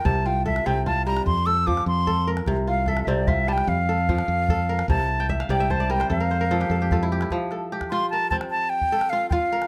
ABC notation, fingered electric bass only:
X:1
M:12/8
L:1/8
Q:3/8=99
K:F
V:1 name="Fingered electric bass" clef=bass
C,,3 C,,3 F,,3 F,,3 | C,,3 C,,3 F,,3 F,,3 | C,,3 C,,3 F,,3 F,,3 | z12 |]